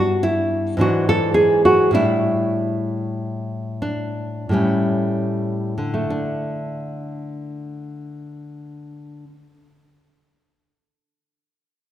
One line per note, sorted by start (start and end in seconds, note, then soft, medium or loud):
0.00 0.74 G2 medium
0.00 0.75 G3 soft
0.00 0.75 B3 soft
0.00 0.23 F#4 medium
0.23 0.76 E4 medium
0.77 1.88 G#2 medium
0.77 1.89 E3 soft
0.77 1.90 D4 soft
0.81 1.08 F#4 medium
1.09 1.34 A4 medium
1.34 1.63 G#4 medium
1.65 1.93 F#4 medium
1.91 4.48 A2 soft
1.91 4.49 G3 soft
1.91 3.81 D4 soft
1.91 3.78 E4 medium
3.82 4.50 D4 medium
4.49 6.05 A2 soft
4.49 5.77 G3 soft
4.49 5.93 A3 soft
4.53 6.07 C#4 soft
5.78 9.24 D3 soft
5.94 9.40 A3 soft
6.10 9.57 D4 medium